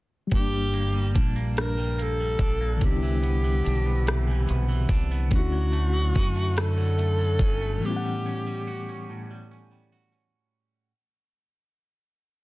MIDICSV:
0, 0, Header, 1, 6, 480
1, 0, Start_track
1, 0, Tempo, 833333
1, 185, Time_signature, 6, 3, 24, 8
1, 7163, End_track
2, 0, Start_track
2, 0, Title_t, "Tenor saxophone"
2, 0, Program_c, 0, 66
2, 202, Note_on_c, 0, 67, 97
2, 650, Note_off_c, 0, 67, 0
2, 927, Note_on_c, 0, 70, 89
2, 1165, Note_on_c, 0, 69, 95
2, 1174, Note_off_c, 0, 70, 0
2, 1635, Note_off_c, 0, 69, 0
2, 1643, Note_on_c, 0, 67, 84
2, 2811, Note_off_c, 0, 67, 0
2, 3083, Note_on_c, 0, 66, 91
2, 3802, Note_on_c, 0, 69, 106
2, 3811, Note_off_c, 0, 66, 0
2, 4524, Note_on_c, 0, 67, 87
2, 4533, Note_off_c, 0, 69, 0
2, 5475, Note_off_c, 0, 67, 0
2, 7163, End_track
3, 0, Start_track
3, 0, Title_t, "Reed electric piano"
3, 0, Program_c, 1, 4
3, 156, Note_on_c, 1, 55, 52
3, 192, Note_on_c, 1, 58, 53
3, 226, Note_on_c, 1, 62, 60
3, 283, Control_c, 1, 64, 127
3, 1588, Note_off_c, 1, 55, 0
3, 1594, Note_on_c, 1, 50, 57
3, 1605, Note_off_c, 1, 58, 0
3, 1612, Note_on_c, 1, 55, 51
3, 1623, Note_off_c, 1, 62, 0
3, 1628, Note_on_c, 1, 59, 51
3, 1631, Control_c, 1, 64, 0
3, 1644, Note_on_c, 1, 62, 51
3, 1662, Note_on_c, 1, 63, 51
3, 1681, Note_off_c, 1, 63, 0
3, 1702, Note_on_c, 1, 64, 62
3, 1740, Control_c, 1, 64, 127
3, 3027, Note_off_c, 1, 50, 0
3, 3035, Note_off_c, 1, 55, 0
3, 3039, Note_on_c, 1, 50, 57
3, 3043, Note_off_c, 1, 59, 0
3, 3052, Note_off_c, 1, 62, 0
3, 3055, Note_on_c, 1, 57, 52
3, 3072, Control_c, 1, 64, 0
3, 3073, Note_on_c, 1, 61, 55
3, 3080, Note_off_c, 1, 64, 0
3, 3089, Note_on_c, 1, 64, 53
3, 3106, Note_on_c, 1, 66, 65
3, 3169, Control_c, 1, 64, 127
3, 4469, Note_off_c, 1, 50, 0
3, 4477, Note_off_c, 1, 57, 0
3, 4480, Note_on_c, 1, 45, 52
3, 4486, Note_off_c, 1, 61, 0
3, 4493, Note_on_c, 1, 52, 50
3, 4494, Note_off_c, 1, 64, 0
3, 4502, Note_off_c, 1, 66, 0
3, 4507, Note_on_c, 1, 55, 48
3, 4512, Control_c, 1, 64, 0
3, 4519, Note_on_c, 1, 59, 48
3, 4533, Note_on_c, 1, 61, 53
3, 4548, Note_on_c, 1, 65, 51
3, 4564, Note_off_c, 1, 65, 0
3, 4587, Note_on_c, 1, 78, 64
3, 4619, Control_c, 1, 64, 127
3, 5909, Note_off_c, 1, 45, 0
3, 5916, Note_off_c, 1, 52, 0
3, 5923, Note_off_c, 1, 55, 0
3, 5929, Note_off_c, 1, 59, 0
3, 5936, Note_off_c, 1, 61, 0
3, 5953, Control_c, 1, 64, 0
3, 5963, Note_off_c, 1, 78, 0
3, 7163, End_track
4, 0, Start_track
4, 0, Title_t, "Clean electric guitar"
4, 0, Program_c, 2, 27
4, 182, Note_on_c, 2, 43, 72
4, 303, Note_on_c, 2, 55, 46
4, 423, Note_on_c, 2, 58, 49
4, 538, Note_off_c, 2, 55, 0
4, 540, Note_on_c, 2, 55, 53
4, 660, Note_on_c, 2, 62, 56
4, 775, Note_off_c, 2, 58, 0
4, 782, Note_on_c, 2, 58, 49
4, 897, Note_off_c, 2, 43, 0
4, 904, Note_on_c, 2, 43, 66
4, 1021, Note_off_c, 2, 55, 0
4, 1023, Note_on_c, 2, 55, 53
4, 1136, Note_off_c, 2, 58, 0
4, 1142, Note_on_c, 2, 58, 53
4, 1266, Note_off_c, 2, 55, 0
4, 1268, Note_on_c, 2, 55, 51
4, 1382, Note_off_c, 2, 62, 0
4, 1384, Note_on_c, 2, 62, 59
4, 1494, Note_off_c, 2, 58, 0
4, 1500, Note_on_c, 2, 58, 53
4, 1620, Note_on_c, 2, 48, 70
4, 1671, Note_off_c, 2, 58, 0
4, 1672, Note_off_c, 2, 43, 0
4, 1740, Note_off_c, 2, 55, 0
4, 1742, Note_on_c, 2, 52, 55
4, 1760, Note_off_c, 2, 62, 0
4, 1858, Note_on_c, 2, 59, 51
4, 1973, Note_off_c, 2, 52, 0
4, 1980, Note_on_c, 2, 52, 54
4, 2100, Note_on_c, 2, 62, 56
4, 2216, Note_off_c, 2, 59, 0
4, 2223, Note_on_c, 2, 59, 46
4, 2335, Note_off_c, 2, 48, 0
4, 2341, Note_on_c, 2, 48, 72
4, 2455, Note_off_c, 2, 52, 0
4, 2462, Note_on_c, 2, 52, 54
4, 2569, Note_off_c, 2, 59, 0
4, 2576, Note_on_c, 2, 59, 53
4, 2691, Note_off_c, 2, 52, 0
4, 2698, Note_on_c, 2, 52, 60
4, 2819, Note_off_c, 2, 62, 0
4, 2822, Note_on_c, 2, 62, 53
4, 2937, Note_off_c, 2, 59, 0
4, 2944, Note_on_c, 2, 59, 53
4, 3057, Note_off_c, 2, 48, 0
4, 3059, Note_on_c, 2, 50, 73
4, 3109, Note_off_c, 2, 52, 0
4, 3113, Note_off_c, 2, 59, 0
4, 3181, Note_on_c, 2, 54, 48
4, 3297, Note_on_c, 2, 57, 49
4, 3413, Note_off_c, 2, 54, 0
4, 3415, Note_on_c, 2, 54, 55
4, 3538, Note_off_c, 2, 62, 0
4, 3541, Note_on_c, 2, 61, 56
4, 3658, Note_off_c, 2, 57, 0
4, 3660, Note_on_c, 2, 57, 50
4, 3776, Note_off_c, 2, 50, 0
4, 3783, Note_on_c, 2, 50, 73
4, 3898, Note_off_c, 2, 54, 0
4, 3901, Note_on_c, 2, 54, 54
4, 4017, Note_off_c, 2, 57, 0
4, 4020, Note_on_c, 2, 57, 54
4, 4137, Note_off_c, 2, 54, 0
4, 4139, Note_on_c, 2, 54, 55
4, 4263, Note_off_c, 2, 61, 0
4, 4265, Note_on_c, 2, 61, 56
4, 4381, Note_off_c, 2, 57, 0
4, 4384, Note_on_c, 2, 57, 49
4, 4504, Note_on_c, 2, 45, 77
4, 4552, Note_off_c, 2, 50, 0
4, 4628, Note_off_c, 2, 54, 0
4, 4630, Note_on_c, 2, 55, 47
4, 4647, Note_off_c, 2, 57, 0
4, 4647, Note_off_c, 2, 61, 0
4, 4757, Note_on_c, 2, 61, 51
4, 4874, Note_off_c, 2, 55, 0
4, 4877, Note_on_c, 2, 55, 54
4, 4996, Note_on_c, 2, 66, 60
4, 5117, Note_off_c, 2, 61, 0
4, 5119, Note_on_c, 2, 61, 48
4, 5236, Note_off_c, 2, 45, 0
4, 5238, Note_on_c, 2, 45, 75
4, 5357, Note_off_c, 2, 55, 0
4, 5359, Note_on_c, 2, 55, 53
4, 5477, Note_off_c, 2, 61, 0
4, 5479, Note_on_c, 2, 61, 47
4, 5593, Note_off_c, 2, 55, 0
4, 5596, Note_on_c, 2, 55, 52
4, 5713, Note_off_c, 2, 66, 0
4, 5715, Note_on_c, 2, 66, 54
4, 5829, Note_off_c, 2, 61, 0
4, 5831, Note_on_c, 2, 61, 50
4, 6284, Note_off_c, 2, 61, 0
4, 6286, Note_off_c, 2, 55, 0
4, 6286, Note_off_c, 2, 66, 0
4, 6288, Note_off_c, 2, 45, 0
4, 7163, End_track
5, 0, Start_track
5, 0, Title_t, "Fingered electric bass"
5, 0, Program_c, 3, 33
5, 190, Note_on_c, 3, 31, 86
5, 671, Note_off_c, 3, 31, 0
5, 671, Note_on_c, 3, 34, 77
5, 1365, Note_off_c, 3, 34, 0
5, 1383, Note_on_c, 3, 34, 77
5, 1601, Note_off_c, 3, 34, 0
5, 1628, Note_on_c, 3, 36, 82
5, 2083, Note_off_c, 3, 36, 0
5, 2112, Note_on_c, 3, 35, 83
5, 2566, Note_off_c, 3, 35, 0
5, 2592, Note_on_c, 3, 35, 76
5, 2806, Note_off_c, 3, 35, 0
5, 2822, Note_on_c, 3, 36, 67
5, 3068, Note_off_c, 3, 36, 0
5, 3068, Note_on_c, 3, 38, 80
5, 3523, Note_off_c, 3, 38, 0
5, 3552, Note_on_c, 3, 42, 76
5, 4246, Note_off_c, 3, 42, 0
5, 4264, Note_on_c, 3, 31, 70
5, 4481, Note_off_c, 3, 31, 0
5, 7163, End_track
6, 0, Start_track
6, 0, Title_t, "Drums"
6, 181, Note_on_c, 9, 42, 63
6, 183, Note_on_c, 9, 36, 78
6, 239, Note_off_c, 9, 42, 0
6, 240, Note_off_c, 9, 36, 0
6, 425, Note_on_c, 9, 42, 44
6, 483, Note_off_c, 9, 42, 0
6, 666, Note_on_c, 9, 36, 84
6, 668, Note_on_c, 9, 42, 43
6, 723, Note_off_c, 9, 36, 0
6, 725, Note_off_c, 9, 42, 0
6, 904, Note_on_c, 9, 42, 60
6, 911, Note_on_c, 9, 37, 80
6, 962, Note_off_c, 9, 42, 0
6, 968, Note_off_c, 9, 37, 0
6, 1148, Note_on_c, 9, 42, 39
6, 1206, Note_off_c, 9, 42, 0
6, 1377, Note_on_c, 9, 36, 80
6, 1382, Note_on_c, 9, 42, 47
6, 1434, Note_off_c, 9, 36, 0
6, 1440, Note_off_c, 9, 42, 0
6, 1620, Note_on_c, 9, 42, 58
6, 1622, Note_on_c, 9, 36, 73
6, 1677, Note_off_c, 9, 42, 0
6, 1679, Note_off_c, 9, 36, 0
6, 1863, Note_on_c, 9, 42, 39
6, 1921, Note_off_c, 9, 42, 0
6, 2110, Note_on_c, 9, 42, 45
6, 2168, Note_off_c, 9, 42, 0
6, 2346, Note_on_c, 9, 42, 54
6, 2352, Note_on_c, 9, 37, 90
6, 2403, Note_off_c, 9, 42, 0
6, 2410, Note_off_c, 9, 37, 0
6, 2585, Note_on_c, 9, 42, 42
6, 2642, Note_off_c, 9, 42, 0
6, 2816, Note_on_c, 9, 36, 80
6, 2823, Note_on_c, 9, 42, 51
6, 2874, Note_off_c, 9, 36, 0
6, 2881, Note_off_c, 9, 42, 0
6, 3058, Note_on_c, 9, 42, 57
6, 3061, Note_on_c, 9, 36, 82
6, 3115, Note_off_c, 9, 42, 0
6, 3119, Note_off_c, 9, 36, 0
6, 3302, Note_on_c, 9, 42, 40
6, 3359, Note_off_c, 9, 42, 0
6, 3546, Note_on_c, 9, 36, 84
6, 3548, Note_on_c, 9, 42, 49
6, 3603, Note_off_c, 9, 36, 0
6, 3605, Note_off_c, 9, 42, 0
6, 3782, Note_on_c, 9, 42, 53
6, 3789, Note_on_c, 9, 37, 93
6, 3840, Note_off_c, 9, 42, 0
6, 3846, Note_off_c, 9, 37, 0
6, 4027, Note_on_c, 9, 42, 41
6, 4084, Note_off_c, 9, 42, 0
6, 4259, Note_on_c, 9, 36, 84
6, 4268, Note_on_c, 9, 42, 47
6, 4316, Note_off_c, 9, 36, 0
6, 4325, Note_off_c, 9, 42, 0
6, 7163, End_track
0, 0, End_of_file